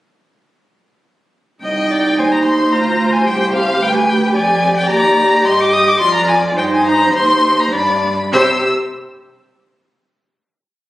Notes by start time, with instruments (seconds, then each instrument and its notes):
1.63 cello C2, viola D#4, violin D#5 G5
1.91 violin D5
2.18 cello D#2, violin C5 G#5
2.32 violin A#5
2.45 violin C6
2.73 cello D2, viola F4, violin A#5
3.13 violin G#5
3.27 cello C2, viola G4, violin G5
3.40 violin G5
3.53 violin F5
3.82 cello D2, violin B4 G5
3.97 violin G#5
4.09 violin G5
4.35 cello F2, violin D5 G#5
4.77 violin G5
4.90 cello D#2, viola G4, violin A#5
5.45 cello G2, violin D#5 C6
5.61 violin D6
5.74 violin D#6
5.89 violin D6
6.00 cello F2, viola F4, violin D5 C6
6.15 violin A#5
6.29 violin G#5
6.56 cello G2, viola D#4, violin C5 G5
6.74 violin G#5
6.87 violin A#5
7.12 cello D#2, viola D#4
7.16 violin C6
7.60 violin A#5
7.71 cello G2, viola D4, violin D5 B5
8.32 cello C3, viola G4, violin C5 E6